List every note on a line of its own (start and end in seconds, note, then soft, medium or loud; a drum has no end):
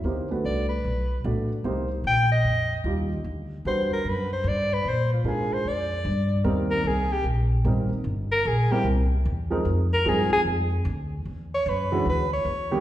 0.04 0.43 D2 medium
0.04 0.28 A#3 medium
0.04 0.28 D#4 soft
0.04 0.28 G4 soft
0.04 0.28 C5 medium
0.31 0.66 A3 medium
0.31 0.65 D4 soft
0.31 0.66 F#4 medium
0.31 0.66 B4 medium
0.44 0.83 C2 medium
0.44 0.69 D5 medium
0.69 1.20 B4 medium
0.85 1.23 B1 medium
1.24 1.63 A1 medium
1.24 1.48 A3 medium
1.24 1.48 D4 soft
1.24 1.48 F#4 soft
1.24 1.48 D5 medium
1.64 2.03 C2 medium
1.64 1.88 A#3 medium
1.64 1.88 D#4 medium
1.64 1.88 G4 medium
1.64 1.88 C5 medium
2.04 2.43 A#1 medium
2.04 2.30 G5 medium
2.32 2.82 D#5 medium
2.44 2.83 F2 medium
2.84 3.23 D#2 medium
2.84 3.08 G3 medium
2.84 3.08 D#4 soft
2.84 3.08 F4 soft
2.84 3.09 G4 medium
3.24 3.64 D2 medium
3.65 3.89 E2 medium
3.65 4.26 G3 soft
3.65 4.27 D4 soft
3.65 4.26 F#4 soft
3.65 4.26 B4 medium
3.65 3.90 C5 medium
3.91 4.10 A#4 medium
3.91 muted upright bass stroke soft
4.04 4.43 F#2 medium
4.09 4.32 B4 medium
4.33 4.50 C5 medium
4.44 4.83 G2 medium
4.48 4.75 D5 medium
4.74 4.90 B4 medium
4.85 5.23 A#2 medium
4.85 5.13 C5 medium
5.13 5.29 F4 soft
5.24 5.64 G#2 medium
5.24 5.86 G#3 soft
5.24 5.86 D4 medium
5.24 5.86 F4 soft
5.24 5.55 G#4 medium
5.24 5.86 A#4 medium
5.53 5.69 C5 medium
5.65 6.04 F2 medium
5.65 6.40 D5 medium
6.05 6.44 G2 medium
6.44 6.83 D#2 medium
6.44 7.06 G3 medium
6.44 7.06 A#3 medium
6.44 7.06 C4 medium
6.44 7.06 D#4 medium
6.44 7.05 A#4 medium
6.71 6.89 A#4 medium
6.84 7.24 C2 medium
6.84 7.14 G#4 medium
7.13 7.26 G4 medium
7.24 7.64 A#1 medium
7.65 7.89 G#1 medium
7.65 7.88 G3 medium
7.65 7.88 A#3 soft
7.65 7.89 C4 soft
7.65 7.88 D#4 soft
7.65 7.89 A#4 medium
7.91 muted upright bass stroke soft
8.04 8.44 G1 medium
8.32 8.49 A#4 medium
8.45 8.69 A#1 medium
8.45 8.74 G#4 medium
8.71 8.84 G3 medium
8.71 8.84 A#3 medium
8.71 8.85 C4 medium
8.71 8.84 E4 medium
8.71 8.86 G4 medium
8.71 8.84 A#4 medium
8.71 muted upright bass stroke soft
8.84 9.23 C2 medium
9.26 9.64 E2 loud
9.50 9.64 F3 medium
9.50 9.64 G#3 medium
9.50 9.64 C4 medium
9.50 9.64 D#4 medium
9.50 9.64 A#4 medium
9.65 10.04 F2 medium
9.94 10.10 A#4 medium
10.05 10.29 G2 medium
10.05 10.66 F3 medium
10.05 10.66 G#3 medium
10.05 10.66 C4 medium
10.05 10.66 D#4 medium
10.05 10.66 G#4 medium
10.05 10.32 G#4 medium
10.30 10.41 G#4 loud
10.30 muted upright bass stroke soft
10.45 10.84 F2 medium
10.85 11.24 D2 loud
11.25 11.64 E2 medium
11.55 11.70 C#5 medium
11.66 12.04 F#2 medium
11.66 12.07 B4 medium
11.92 12.04 E3 medium
11.92 12.04 G#3 medium
11.92 12.04 C#4 medium
11.92 12.04 D4 medium
11.92 12.04 F#4 medium
12.05 12.44 D2 medium
12.10 12.31 B4 medium
12.33 12.80 C#5 medium
12.45 12.80 E2 medium
12.71 12.80 D#3 medium
12.71 12.80 G3 medium
12.71 12.80 A#3 medium
12.71 12.80 D4 medium
12.71 12.80 G4 medium